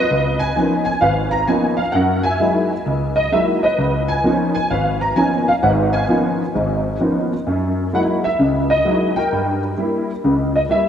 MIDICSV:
0, 0, Header, 1, 2, 480
1, 0, Start_track
1, 0, Tempo, 460829
1, 94, Time_signature, 4, 2, 24, 8
1, 11340, End_track
2, 0, Start_track
2, 0, Title_t, "Grand piano"
2, 0, Program_c, 0, 0
2, 0, Note_on_c, 0, 71, 68
2, 0, Note_on_c, 0, 75, 95
2, 109, Note_on_c, 0, 37, 61
2, 381, Note_off_c, 0, 75, 0
2, 410, Note_on_c, 0, 80, 90
2, 518, Note_off_c, 0, 37, 0
2, 583, Note_on_c, 0, 53, 48
2, 586, Note_on_c, 0, 58, 45
2, 587, Note_on_c, 0, 59, 45
2, 589, Note_on_c, 0, 63, 56
2, 590, Note_on_c, 0, 61, 43
2, 857, Note_off_c, 0, 80, 0
2, 865, Note_off_c, 0, 71, 0
2, 885, Note_on_c, 0, 80, 83
2, 912, Note_off_c, 0, 53, 0
2, 913, Note_off_c, 0, 58, 0
2, 914, Note_off_c, 0, 59, 0
2, 915, Note_off_c, 0, 63, 0
2, 916, Note_off_c, 0, 61, 0
2, 1039, Note_off_c, 0, 80, 0
2, 1051, Note_on_c, 0, 77, 81
2, 1054, Note_on_c, 0, 32, 60
2, 1068, Note_on_c, 0, 71, 60
2, 1366, Note_on_c, 0, 82, 93
2, 1379, Note_off_c, 0, 77, 0
2, 1470, Note_off_c, 0, 32, 0
2, 1520, Note_off_c, 0, 82, 0
2, 1535, Note_on_c, 0, 53, 48
2, 1536, Note_on_c, 0, 80, 83
2, 1542, Note_on_c, 0, 58, 45
2, 1543, Note_on_c, 0, 59, 41
2, 1543, Note_on_c, 0, 61, 42
2, 1544, Note_on_c, 0, 63, 55
2, 1830, Note_off_c, 0, 80, 0
2, 1842, Note_on_c, 0, 77, 79
2, 1868, Note_off_c, 0, 53, 0
2, 1872, Note_off_c, 0, 58, 0
2, 1872, Note_off_c, 0, 59, 0
2, 1872, Note_off_c, 0, 61, 0
2, 1873, Note_off_c, 0, 63, 0
2, 1980, Note_off_c, 0, 71, 0
2, 2001, Note_on_c, 0, 78, 86
2, 2015, Note_off_c, 0, 77, 0
2, 2024, Note_on_c, 0, 42, 62
2, 2027, Note_on_c, 0, 70, 62
2, 2302, Note_off_c, 0, 78, 0
2, 2327, Note_on_c, 0, 80, 86
2, 2346, Note_on_c, 0, 76, 65
2, 2436, Note_off_c, 0, 42, 0
2, 2498, Note_on_c, 0, 54, 50
2, 2501, Note_on_c, 0, 58, 46
2, 2502, Note_on_c, 0, 56, 46
2, 2504, Note_on_c, 0, 63, 46
2, 2506, Note_on_c, 0, 64, 56
2, 2830, Note_off_c, 0, 54, 0
2, 2832, Note_off_c, 0, 56, 0
2, 2832, Note_off_c, 0, 58, 0
2, 2833, Note_off_c, 0, 63, 0
2, 2834, Note_off_c, 0, 64, 0
2, 2940, Note_off_c, 0, 70, 0
2, 2977, Note_on_c, 0, 37, 59
2, 3258, Note_off_c, 0, 76, 0
2, 3289, Note_on_c, 0, 75, 81
2, 3319, Note_off_c, 0, 80, 0
2, 3392, Note_off_c, 0, 37, 0
2, 3456, Note_on_c, 0, 54, 50
2, 3457, Note_on_c, 0, 58, 47
2, 3459, Note_off_c, 0, 75, 0
2, 3460, Note_on_c, 0, 56, 46
2, 3462, Note_on_c, 0, 64, 55
2, 3463, Note_on_c, 0, 63, 43
2, 3463, Note_on_c, 0, 76, 80
2, 3781, Note_on_c, 0, 75, 79
2, 3786, Note_off_c, 0, 76, 0
2, 3789, Note_off_c, 0, 54, 0
2, 3790, Note_off_c, 0, 58, 0
2, 3791, Note_off_c, 0, 56, 0
2, 3792, Note_off_c, 0, 64, 0
2, 3793, Note_off_c, 0, 63, 0
2, 3795, Note_on_c, 0, 71, 58
2, 3936, Note_on_c, 0, 37, 66
2, 4224, Note_off_c, 0, 75, 0
2, 4254, Note_on_c, 0, 80, 91
2, 4352, Note_off_c, 0, 37, 0
2, 4410, Note_on_c, 0, 53, 52
2, 4415, Note_on_c, 0, 58, 49
2, 4417, Note_on_c, 0, 59, 47
2, 4418, Note_on_c, 0, 63, 58
2, 4419, Note_on_c, 0, 61, 47
2, 4703, Note_off_c, 0, 71, 0
2, 4720, Note_off_c, 0, 80, 0
2, 4735, Note_on_c, 0, 80, 85
2, 4747, Note_off_c, 0, 53, 0
2, 4749, Note_off_c, 0, 58, 0
2, 4750, Note_off_c, 0, 59, 0
2, 4751, Note_off_c, 0, 61, 0
2, 4751, Note_off_c, 0, 63, 0
2, 4896, Note_on_c, 0, 32, 60
2, 4901, Note_on_c, 0, 77, 72
2, 4902, Note_off_c, 0, 80, 0
2, 4921, Note_on_c, 0, 71, 53
2, 5194, Note_off_c, 0, 77, 0
2, 5221, Note_on_c, 0, 82, 84
2, 5312, Note_off_c, 0, 32, 0
2, 5373, Note_on_c, 0, 53, 46
2, 5374, Note_on_c, 0, 58, 43
2, 5374, Note_on_c, 0, 59, 43
2, 5375, Note_on_c, 0, 80, 82
2, 5377, Note_on_c, 0, 63, 50
2, 5380, Note_on_c, 0, 61, 44
2, 5385, Note_off_c, 0, 82, 0
2, 5703, Note_off_c, 0, 80, 0
2, 5708, Note_off_c, 0, 53, 0
2, 5709, Note_off_c, 0, 58, 0
2, 5709, Note_off_c, 0, 59, 0
2, 5709, Note_on_c, 0, 77, 76
2, 5710, Note_off_c, 0, 63, 0
2, 5712, Note_off_c, 0, 61, 0
2, 5761, Note_off_c, 0, 77, 0
2, 5827, Note_off_c, 0, 71, 0
2, 5860, Note_on_c, 0, 44, 63
2, 5862, Note_on_c, 0, 78, 78
2, 5865, Note_on_c, 0, 32, 67
2, 5871, Note_on_c, 0, 71, 55
2, 5933, Note_off_c, 0, 78, 0
2, 6175, Note_on_c, 0, 80, 83
2, 6198, Note_on_c, 0, 77, 55
2, 6274, Note_off_c, 0, 44, 0
2, 6277, Note_off_c, 0, 32, 0
2, 6335, Note_on_c, 0, 58, 47
2, 6336, Note_on_c, 0, 53, 50
2, 6338, Note_on_c, 0, 59, 47
2, 6339, Note_on_c, 0, 61, 46
2, 6341, Note_on_c, 0, 63, 56
2, 6669, Note_off_c, 0, 58, 0
2, 6670, Note_off_c, 0, 53, 0
2, 6671, Note_off_c, 0, 59, 0
2, 6671, Note_off_c, 0, 61, 0
2, 6673, Note_off_c, 0, 63, 0
2, 6782, Note_off_c, 0, 71, 0
2, 6817, Note_on_c, 0, 32, 59
2, 6818, Note_on_c, 0, 44, 62
2, 7233, Note_off_c, 0, 32, 0
2, 7234, Note_off_c, 0, 44, 0
2, 7293, Note_on_c, 0, 58, 44
2, 7294, Note_on_c, 0, 53, 49
2, 7295, Note_on_c, 0, 59, 43
2, 7296, Note_on_c, 0, 61, 43
2, 7299, Note_on_c, 0, 63, 52
2, 7573, Note_off_c, 0, 80, 0
2, 7585, Note_off_c, 0, 77, 0
2, 7629, Note_off_c, 0, 53, 0
2, 7629, Note_off_c, 0, 58, 0
2, 7630, Note_off_c, 0, 59, 0
2, 7630, Note_off_c, 0, 61, 0
2, 7632, Note_off_c, 0, 63, 0
2, 7776, Note_on_c, 0, 42, 61
2, 8193, Note_off_c, 0, 42, 0
2, 8260, Note_on_c, 0, 56, 47
2, 8261, Note_on_c, 0, 54, 51
2, 8264, Note_on_c, 0, 63, 46
2, 8265, Note_on_c, 0, 58, 46
2, 8268, Note_on_c, 0, 64, 57
2, 8278, Note_on_c, 0, 78, 77
2, 8347, Note_off_c, 0, 78, 0
2, 8585, Note_on_c, 0, 76, 78
2, 8592, Note_off_c, 0, 56, 0
2, 8593, Note_off_c, 0, 54, 0
2, 8594, Note_off_c, 0, 63, 0
2, 8595, Note_off_c, 0, 58, 0
2, 8596, Note_off_c, 0, 64, 0
2, 8738, Note_on_c, 0, 37, 64
2, 8738, Note_on_c, 0, 49, 60
2, 9062, Note_on_c, 0, 75, 82
2, 9074, Note_off_c, 0, 76, 0
2, 9154, Note_off_c, 0, 37, 0
2, 9154, Note_off_c, 0, 49, 0
2, 9220, Note_on_c, 0, 56, 43
2, 9221, Note_on_c, 0, 54, 51
2, 9223, Note_on_c, 0, 58, 45
2, 9227, Note_on_c, 0, 64, 54
2, 9228, Note_on_c, 0, 63, 42
2, 9505, Note_off_c, 0, 75, 0
2, 9542, Note_on_c, 0, 79, 85
2, 9553, Note_off_c, 0, 54, 0
2, 9553, Note_off_c, 0, 56, 0
2, 9554, Note_off_c, 0, 58, 0
2, 9556, Note_off_c, 0, 63, 0
2, 9556, Note_off_c, 0, 64, 0
2, 9563, Note_on_c, 0, 70, 60
2, 9708, Note_on_c, 0, 43, 65
2, 9985, Note_off_c, 0, 79, 0
2, 10120, Note_off_c, 0, 43, 0
2, 10177, Note_on_c, 0, 55, 52
2, 10184, Note_on_c, 0, 58, 48
2, 10186, Note_on_c, 0, 64, 54
2, 10467, Note_off_c, 0, 70, 0
2, 10511, Note_off_c, 0, 55, 0
2, 10514, Note_off_c, 0, 58, 0
2, 10516, Note_off_c, 0, 64, 0
2, 10666, Note_on_c, 0, 37, 64
2, 10667, Note_on_c, 0, 49, 59
2, 10995, Note_on_c, 0, 75, 73
2, 11047, Note_off_c, 0, 75, 0
2, 11078, Note_off_c, 0, 37, 0
2, 11079, Note_off_c, 0, 49, 0
2, 11136, Note_on_c, 0, 55, 50
2, 11139, Note_on_c, 0, 58, 49
2, 11143, Note_on_c, 0, 64, 54
2, 11154, Note_on_c, 0, 76, 78
2, 11340, Note_off_c, 0, 55, 0
2, 11340, Note_off_c, 0, 58, 0
2, 11340, Note_off_c, 0, 64, 0
2, 11340, Note_off_c, 0, 76, 0
2, 11340, End_track
0, 0, End_of_file